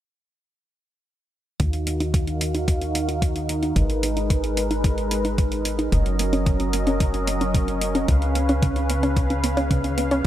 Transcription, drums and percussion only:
1.60 kick loud
1.60 closed hi-hat medium
1.73 closed hi-hat soft
1.87 closed hi-hat medium
2.00 closed hi-hat soft
2.14 kick loud
2.14 closed hi-hat medium
2.27 closed hi-hat soft
2.41 closed hi-hat medium
2.55 closed hi-hat soft
2.68 kick loud
2.68 closed hi-hat medium
2.82 closed hi-hat soft
2.95 closed hi-hat medium
3.09 closed hi-hat soft
3.22 kick loud
3.22 closed hi-hat medium
3.36 closed hi-hat soft
3.49 closed hi-hat medium
3.63 closed hi-hat soft
3.76 kick loud
3.76 closed hi-hat medium
3.90 closed hi-hat soft
4.03 closed hi-hat medium
4.17 closed hi-hat soft
4.30 kick loud
4.30 closed hi-hat medium
4.44 closed hi-hat soft
4.57 closed hi-hat medium
4.71 closed hi-hat soft
4.84 kick loud
4.84 closed hi-hat medium
4.98 closed hi-hat soft
5.11 closed hi-hat medium
5.25 closed hi-hat soft
5.38 kick loud
5.38 closed hi-hat medium
5.52 closed hi-hat soft
5.65 closed hi-hat medium
5.79 closed hi-hat soft
5.92 kick loud
5.92 closed hi-hat medium
6.06 closed hi-hat soft
6.19 closed hi-hat medium
6.33 closed hi-hat soft
6.46 kick loud
6.46 closed hi-hat medium
6.60 closed hi-hat soft
6.73 closed hi-hat medium
6.87 closed hi-hat soft
7.00 kick loud
7.00 closed hi-hat medium
7.14 closed hi-hat soft
7.27 closed hi-hat medium
7.41 closed hi-hat soft
7.54 kick loud
7.54 closed hi-hat medium
7.68 closed hi-hat soft
7.81 closed hi-hat medium
7.95 closed hi-hat soft
8.08 kick loud
8.08 closed hi-hat medium
8.22 closed hi-hat soft
8.35 closed hi-hat medium
8.49 closed hi-hat soft
8.62 kick loud
8.62 closed hi-hat medium
8.76 closed hi-hat soft
8.90 closed hi-hat medium
9.03 closed hi-hat soft
9.17 kick loud
9.17 closed hi-hat medium
9.30 closed hi-hat soft
9.44 closed hi-hat medium
9.57 closed hi-hat soft
9.71 kick loud
9.71 closed hi-hat medium
9.84 closed hi-hat soft
9.98 closed hi-hat medium
10.11 closed hi-hat soft

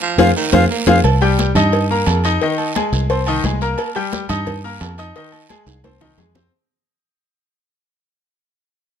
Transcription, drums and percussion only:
0.18 cowbell loud
0.18 high conga loud
0.18 high timbale loud
0.18 long guiro loud
0.53 cowbell loud
0.53 high conga loud
0.53 high timbale loud
0.53 long guiro loud
0.87 cowbell loud
0.87 high conga loud
0.87 high timbale loud
0.87 long guiro loud
1.04 cowbell loud
1.04 high conga soft
1.04 low agogo loud
1.04 long guiro medium
1.21 high conga soft
1.21 low agogo medium
1.39 cowbell medium
1.39 high conga medium
1.39 low timbale medium
1.39 short guiro medium
1.55 low conga loud
1.55 low agogo loud
1.55 short guiro medium
1.72 cowbell loud
1.72 high conga soft
1.72 low agogo medium
1.72 long guiro medium
1.90 high conga soft
2.06 cowbell medium
2.06 high conga soft
2.06 low timbale medium
2.06 low agogo loud
2.06 short guiro medium
2.24 cowbell medium
2.24 high conga soft
2.24 low agogo loud
2.24 short guiro medium
2.42 cowbell loud
2.42 high conga soft
2.42 long guiro medium
2.58 high conga soft
2.58 low agogo medium
2.75 cowbell medium
2.75 high conga medium
2.75 low timbale medium
2.75 low agogo loud
2.75 short guiro medium
2.93 cowbell medium
2.93 short guiro medium
3.10 cowbell loud
3.10 high conga soft
3.10 low agogo medium
3.10 long guiro medium
3.27 high conga soft
3.27 low agogo loud
3.44 cowbell medium
3.44 high conga medium
3.44 low timbale medium
3.44 short guiro medium
3.61 cowbell medium
3.61 short guiro medium
3.78 cowbell loud
3.78 high conga soft
3.78 low agogo loud
3.78 long guiro medium
3.95 high conga soft
3.95 low agogo medium
4.12 cowbell medium
4.12 high conga loud
4.12 low timbale medium
4.12 short guiro medium
4.29 low conga medium
4.29 low agogo loud
4.29 short guiro medium
4.46 cowbell loud
4.46 high conga soft
4.46 low conga medium
4.46 low agogo medium
4.46 long guiro medium
4.64 high conga soft
4.81 cowbell medium
4.81 high conga soft
4.81 low timbale loud
4.81 low agogo loud
4.81 short guiro medium
4.98 cowbell medium
4.98 high conga soft
4.98 low agogo loud
4.98 short guiro medium
5.16 cowbell loud
5.16 high conga soft
5.16 long guiro medium
5.32 high conga soft
5.32 low agogo medium
5.49 cowbell medium
5.49 high conga medium
5.49 low timbale medium
5.49 low agogo loud
5.49 short guiro medium
5.67 cowbell medium
5.67 high timbale medium
5.67 short guiro medium
5.84 cowbell loud
5.84 high conga medium
5.84 high timbale loud
5.84 low agogo medium
5.84 long guiro medium
6.01 high bongo medium
6.01 low conga loud
6.01 high timbale medium
6.01 low agogo loud
6.18 cowbell medium
6.18 low bongo medium
6.18 low conga medium
6.18 low timbale loud
6.18 short guiro medium
6.35 cowbell medium
6.35 low bongo loud
6.35 low conga loud
6.35 low timbale medium
6.35 short guiro medium

